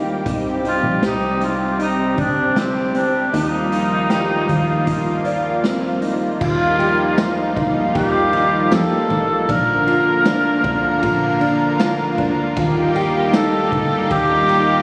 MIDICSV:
0, 0, Header, 1, 6, 480
1, 0, Start_track
1, 0, Tempo, 769231
1, 163, Time_signature, 4, 2, 24, 8
1, 9248, End_track
2, 0, Start_track
2, 0, Title_t, "Cor anglais"
2, 0, Program_c, 0, 69
2, 421, Note_on_c, 0, 65, 97
2, 636, Note_off_c, 0, 65, 0
2, 663, Note_on_c, 0, 63, 86
2, 898, Note_on_c, 0, 65, 82
2, 907, Note_off_c, 0, 63, 0
2, 1131, Note_off_c, 0, 65, 0
2, 1138, Note_on_c, 0, 63, 86
2, 1354, Note_off_c, 0, 63, 0
2, 1374, Note_on_c, 0, 62, 77
2, 1617, Note_on_c, 0, 60, 79
2, 1626, Note_off_c, 0, 62, 0
2, 1848, Note_off_c, 0, 60, 0
2, 1852, Note_on_c, 0, 62, 78
2, 2071, Note_off_c, 0, 62, 0
2, 2090, Note_on_c, 0, 63, 89
2, 3502, Note_off_c, 0, 63, 0
2, 4013, Note_on_c, 0, 65, 111
2, 4703, Note_off_c, 0, 65, 0
2, 4974, Note_on_c, 0, 67, 94
2, 5456, Note_on_c, 0, 69, 103
2, 5465, Note_off_c, 0, 67, 0
2, 5933, Note_on_c, 0, 70, 103
2, 5943, Note_off_c, 0, 69, 0
2, 7608, Note_off_c, 0, 70, 0
2, 8328, Note_on_c, 0, 69, 114
2, 8808, Note_on_c, 0, 67, 105
2, 8817, Note_off_c, 0, 69, 0
2, 9248, Note_off_c, 0, 67, 0
2, 9248, End_track
3, 0, Start_track
3, 0, Title_t, "Clean electric guitar"
3, 0, Program_c, 1, 27
3, 0, Note_on_c, 1, 63, 68
3, 154, Note_off_c, 1, 63, 0
3, 161, Note_on_c, 1, 63, 77
3, 393, Note_off_c, 1, 63, 0
3, 400, Note_on_c, 1, 63, 67
3, 640, Note_on_c, 1, 67, 75
3, 642, Note_off_c, 1, 63, 0
3, 879, Note_on_c, 1, 63, 67
3, 882, Note_off_c, 1, 67, 0
3, 1110, Note_off_c, 1, 63, 0
3, 1118, Note_on_c, 1, 63, 68
3, 1359, Note_off_c, 1, 63, 0
3, 1361, Note_on_c, 1, 62, 72
3, 1598, Note_off_c, 1, 62, 0
3, 1601, Note_on_c, 1, 60, 71
3, 1832, Note_off_c, 1, 60, 0
3, 1839, Note_on_c, 1, 60, 69
3, 2077, Note_off_c, 1, 60, 0
3, 2080, Note_on_c, 1, 63, 83
3, 2308, Note_off_c, 1, 63, 0
3, 2316, Note_on_c, 1, 63, 67
3, 2560, Note_off_c, 1, 63, 0
3, 2560, Note_on_c, 1, 67, 73
3, 2801, Note_on_c, 1, 63, 65
3, 2802, Note_off_c, 1, 67, 0
3, 3031, Note_off_c, 1, 63, 0
3, 3039, Note_on_c, 1, 63, 70
3, 3281, Note_off_c, 1, 63, 0
3, 3281, Note_on_c, 1, 74, 70
3, 3519, Note_on_c, 1, 60, 72
3, 3522, Note_off_c, 1, 74, 0
3, 3755, Note_on_c, 1, 63, 70
3, 3761, Note_off_c, 1, 60, 0
3, 3998, Note_on_c, 1, 65, 89
3, 3999, Note_off_c, 1, 63, 0
3, 4236, Note_off_c, 1, 65, 0
3, 4238, Note_on_c, 1, 67, 70
3, 4476, Note_on_c, 1, 63, 81
3, 4481, Note_off_c, 1, 67, 0
3, 4708, Note_off_c, 1, 63, 0
3, 4716, Note_on_c, 1, 63, 80
3, 4960, Note_off_c, 1, 63, 0
3, 4960, Note_on_c, 1, 67, 80
3, 5200, Note_on_c, 1, 63, 80
3, 5202, Note_off_c, 1, 67, 0
3, 5442, Note_off_c, 1, 63, 0
3, 5442, Note_on_c, 1, 67, 78
3, 5679, Note_on_c, 1, 63, 78
3, 5682, Note_off_c, 1, 67, 0
3, 5919, Note_off_c, 1, 63, 0
3, 5921, Note_on_c, 1, 62, 89
3, 6161, Note_on_c, 1, 65, 73
3, 6162, Note_off_c, 1, 62, 0
3, 6402, Note_off_c, 1, 65, 0
3, 6403, Note_on_c, 1, 62, 81
3, 6635, Note_off_c, 1, 62, 0
3, 6642, Note_on_c, 1, 62, 78
3, 6879, Note_on_c, 1, 65, 84
3, 6883, Note_off_c, 1, 62, 0
3, 7119, Note_on_c, 1, 62, 85
3, 7121, Note_off_c, 1, 65, 0
3, 7361, Note_off_c, 1, 62, 0
3, 7363, Note_on_c, 1, 65, 80
3, 7603, Note_off_c, 1, 65, 0
3, 7604, Note_on_c, 1, 62, 80
3, 7843, Note_off_c, 1, 62, 0
3, 7843, Note_on_c, 1, 65, 83
3, 8083, Note_off_c, 1, 65, 0
3, 8086, Note_on_c, 1, 67, 74
3, 8323, Note_on_c, 1, 63, 83
3, 8325, Note_off_c, 1, 67, 0
3, 8556, Note_off_c, 1, 63, 0
3, 8564, Note_on_c, 1, 63, 81
3, 8804, Note_off_c, 1, 63, 0
3, 8804, Note_on_c, 1, 67, 86
3, 9043, Note_on_c, 1, 63, 85
3, 9044, Note_off_c, 1, 67, 0
3, 9248, Note_off_c, 1, 63, 0
3, 9248, End_track
4, 0, Start_track
4, 0, Title_t, "Analog synth pad"
4, 0, Program_c, 2, 89
4, 0, Note_on_c, 2, 55, 69
4, 0, Note_on_c, 2, 58, 74
4, 0, Note_on_c, 2, 65, 68
4, 0, Note_on_c, 2, 67, 84
4, 147, Note_off_c, 2, 58, 0
4, 148, Note_off_c, 2, 65, 0
4, 161, Note_on_c, 2, 48, 75
4, 166, Note_on_c, 2, 60, 69
4, 2056, Note_off_c, 2, 67, 0
4, 2063, Note_off_c, 2, 48, 0
4, 2066, Note_off_c, 2, 60, 0
4, 2090, Note_on_c, 2, 53, 73
4, 2090, Note_on_c, 2, 65, 89
4, 2093, Note_on_c, 2, 58, 69
4, 3980, Note_off_c, 2, 55, 0
4, 3987, Note_off_c, 2, 53, 0
4, 3987, Note_off_c, 2, 65, 0
4, 3989, Note_off_c, 2, 58, 0
4, 4002, Note_on_c, 2, 58, 79
4, 4002, Note_on_c, 2, 63, 88
4, 4005, Note_on_c, 2, 55, 75
4, 4006, Note_on_c, 2, 65, 86
4, 4007, Note_on_c, 2, 53, 78
4, 5904, Note_off_c, 2, 63, 0
4, 5905, Note_off_c, 2, 55, 0
4, 5906, Note_off_c, 2, 53, 0
4, 5906, Note_off_c, 2, 65, 0
4, 5925, Note_on_c, 2, 70, 91
4, 5927, Note_on_c, 2, 50, 80
4, 5927, Note_on_c, 2, 65, 75
4, 5930, Note_on_c, 2, 53, 78
4, 7818, Note_off_c, 2, 58, 0
4, 7825, Note_off_c, 2, 70, 0
4, 7826, Note_off_c, 2, 50, 0
4, 7827, Note_off_c, 2, 53, 0
4, 7842, Note_on_c, 2, 58, 79
4, 7845, Note_on_c, 2, 55, 81
4, 7845, Note_on_c, 2, 67, 91
4, 7846, Note_on_c, 2, 63, 85
4, 9248, Note_off_c, 2, 55, 0
4, 9248, Note_off_c, 2, 58, 0
4, 9248, Note_off_c, 2, 63, 0
4, 9248, Note_off_c, 2, 65, 0
4, 9248, Note_off_c, 2, 67, 0
4, 9248, End_track
5, 0, Start_track
5, 0, Title_t, "Analog synth bass"
5, 0, Program_c, 3, 38
5, 0, Note_on_c, 3, 39, 94
5, 139, Note_off_c, 3, 39, 0
5, 162, Note_on_c, 3, 36, 94
5, 505, Note_off_c, 3, 36, 0
5, 520, Note_on_c, 3, 34, 82
5, 635, Note_off_c, 3, 34, 0
5, 641, Note_on_c, 3, 36, 94
5, 1337, Note_off_c, 3, 36, 0
5, 1360, Note_on_c, 3, 38, 86
5, 2057, Note_off_c, 3, 38, 0
5, 2081, Note_on_c, 3, 39, 100
5, 2777, Note_off_c, 3, 39, 0
5, 2801, Note_on_c, 3, 39, 82
5, 3977, Note_off_c, 3, 39, 0
5, 4001, Note_on_c, 3, 39, 100
5, 4697, Note_off_c, 3, 39, 0
5, 4721, Note_on_c, 3, 38, 98
5, 4950, Note_off_c, 3, 38, 0
5, 4962, Note_on_c, 3, 39, 101
5, 5419, Note_off_c, 3, 39, 0
5, 5441, Note_on_c, 3, 41, 94
5, 5670, Note_off_c, 3, 41, 0
5, 5680, Note_on_c, 3, 33, 91
5, 5909, Note_off_c, 3, 33, 0
5, 5924, Note_on_c, 3, 34, 95
5, 6619, Note_off_c, 3, 34, 0
5, 6640, Note_on_c, 3, 36, 99
5, 6870, Note_off_c, 3, 36, 0
5, 6882, Note_on_c, 3, 34, 103
5, 7578, Note_off_c, 3, 34, 0
5, 7600, Note_on_c, 3, 38, 94
5, 7830, Note_off_c, 3, 38, 0
5, 7842, Note_on_c, 3, 39, 102
5, 8538, Note_off_c, 3, 39, 0
5, 8562, Note_on_c, 3, 38, 94
5, 8790, Note_off_c, 3, 38, 0
5, 8804, Note_on_c, 3, 39, 104
5, 9248, Note_off_c, 3, 39, 0
5, 9248, End_track
6, 0, Start_track
6, 0, Title_t, "Drums"
6, 162, Note_on_c, 9, 36, 92
6, 162, Note_on_c, 9, 42, 83
6, 224, Note_off_c, 9, 42, 0
6, 225, Note_off_c, 9, 36, 0
6, 405, Note_on_c, 9, 42, 44
6, 467, Note_off_c, 9, 42, 0
6, 640, Note_on_c, 9, 38, 95
6, 641, Note_on_c, 9, 42, 61
6, 702, Note_off_c, 9, 38, 0
6, 703, Note_off_c, 9, 42, 0
6, 881, Note_on_c, 9, 42, 52
6, 944, Note_off_c, 9, 42, 0
6, 1120, Note_on_c, 9, 42, 60
6, 1183, Note_off_c, 9, 42, 0
6, 1358, Note_on_c, 9, 42, 46
6, 1361, Note_on_c, 9, 36, 81
6, 1420, Note_off_c, 9, 42, 0
6, 1424, Note_off_c, 9, 36, 0
6, 1599, Note_on_c, 9, 38, 98
6, 1603, Note_on_c, 9, 42, 64
6, 1662, Note_off_c, 9, 38, 0
6, 1665, Note_off_c, 9, 42, 0
6, 1838, Note_on_c, 9, 42, 50
6, 1901, Note_off_c, 9, 42, 0
6, 2082, Note_on_c, 9, 42, 83
6, 2144, Note_off_c, 9, 42, 0
6, 2322, Note_on_c, 9, 42, 48
6, 2384, Note_off_c, 9, 42, 0
6, 2559, Note_on_c, 9, 38, 101
6, 2560, Note_on_c, 9, 42, 59
6, 2621, Note_off_c, 9, 38, 0
6, 2622, Note_off_c, 9, 42, 0
6, 2801, Note_on_c, 9, 42, 50
6, 2864, Note_off_c, 9, 42, 0
6, 3038, Note_on_c, 9, 42, 64
6, 3041, Note_on_c, 9, 36, 73
6, 3100, Note_off_c, 9, 42, 0
6, 3103, Note_off_c, 9, 36, 0
6, 3274, Note_on_c, 9, 42, 43
6, 3337, Note_off_c, 9, 42, 0
6, 3519, Note_on_c, 9, 38, 96
6, 3523, Note_on_c, 9, 42, 66
6, 3581, Note_off_c, 9, 38, 0
6, 3585, Note_off_c, 9, 42, 0
6, 3755, Note_on_c, 9, 42, 53
6, 3818, Note_off_c, 9, 42, 0
6, 4001, Note_on_c, 9, 36, 106
6, 4001, Note_on_c, 9, 49, 94
6, 4063, Note_off_c, 9, 36, 0
6, 4063, Note_off_c, 9, 49, 0
6, 4242, Note_on_c, 9, 51, 41
6, 4305, Note_off_c, 9, 51, 0
6, 4478, Note_on_c, 9, 38, 113
6, 4479, Note_on_c, 9, 51, 56
6, 4479, Note_on_c, 9, 54, 63
6, 4541, Note_off_c, 9, 38, 0
6, 4542, Note_off_c, 9, 51, 0
6, 4542, Note_off_c, 9, 54, 0
6, 4721, Note_on_c, 9, 36, 81
6, 4722, Note_on_c, 9, 51, 47
6, 4783, Note_off_c, 9, 36, 0
6, 4784, Note_off_c, 9, 51, 0
6, 4962, Note_on_c, 9, 36, 86
6, 4962, Note_on_c, 9, 51, 61
6, 5025, Note_off_c, 9, 36, 0
6, 5025, Note_off_c, 9, 51, 0
6, 5197, Note_on_c, 9, 51, 40
6, 5260, Note_off_c, 9, 51, 0
6, 5439, Note_on_c, 9, 38, 107
6, 5439, Note_on_c, 9, 54, 67
6, 5443, Note_on_c, 9, 51, 61
6, 5501, Note_off_c, 9, 54, 0
6, 5502, Note_off_c, 9, 38, 0
6, 5505, Note_off_c, 9, 51, 0
6, 5679, Note_on_c, 9, 51, 45
6, 5741, Note_off_c, 9, 51, 0
6, 5921, Note_on_c, 9, 36, 102
6, 5923, Note_on_c, 9, 51, 74
6, 5984, Note_off_c, 9, 36, 0
6, 5985, Note_off_c, 9, 51, 0
6, 6162, Note_on_c, 9, 51, 43
6, 6224, Note_off_c, 9, 51, 0
6, 6399, Note_on_c, 9, 38, 112
6, 6400, Note_on_c, 9, 51, 55
6, 6400, Note_on_c, 9, 54, 67
6, 6461, Note_off_c, 9, 38, 0
6, 6462, Note_off_c, 9, 51, 0
6, 6462, Note_off_c, 9, 54, 0
6, 6640, Note_on_c, 9, 36, 82
6, 6640, Note_on_c, 9, 51, 48
6, 6702, Note_off_c, 9, 36, 0
6, 6703, Note_off_c, 9, 51, 0
6, 6881, Note_on_c, 9, 51, 61
6, 6882, Note_on_c, 9, 36, 89
6, 6943, Note_off_c, 9, 51, 0
6, 6944, Note_off_c, 9, 36, 0
6, 7119, Note_on_c, 9, 51, 42
6, 7181, Note_off_c, 9, 51, 0
6, 7361, Note_on_c, 9, 54, 68
6, 7362, Note_on_c, 9, 38, 109
6, 7365, Note_on_c, 9, 51, 63
6, 7423, Note_off_c, 9, 54, 0
6, 7424, Note_off_c, 9, 38, 0
6, 7428, Note_off_c, 9, 51, 0
6, 7600, Note_on_c, 9, 51, 45
6, 7663, Note_off_c, 9, 51, 0
6, 7842, Note_on_c, 9, 36, 96
6, 7842, Note_on_c, 9, 51, 72
6, 7904, Note_off_c, 9, 36, 0
6, 7904, Note_off_c, 9, 51, 0
6, 8084, Note_on_c, 9, 51, 42
6, 8147, Note_off_c, 9, 51, 0
6, 8321, Note_on_c, 9, 38, 114
6, 8322, Note_on_c, 9, 51, 58
6, 8322, Note_on_c, 9, 54, 67
6, 8383, Note_off_c, 9, 38, 0
6, 8384, Note_off_c, 9, 51, 0
6, 8384, Note_off_c, 9, 54, 0
6, 8562, Note_on_c, 9, 36, 82
6, 8564, Note_on_c, 9, 51, 49
6, 8624, Note_off_c, 9, 36, 0
6, 8627, Note_off_c, 9, 51, 0
6, 8802, Note_on_c, 9, 51, 66
6, 8803, Note_on_c, 9, 36, 89
6, 8865, Note_off_c, 9, 36, 0
6, 8865, Note_off_c, 9, 51, 0
6, 9042, Note_on_c, 9, 51, 43
6, 9104, Note_off_c, 9, 51, 0
6, 9248, End_track
0, 0, End_of_file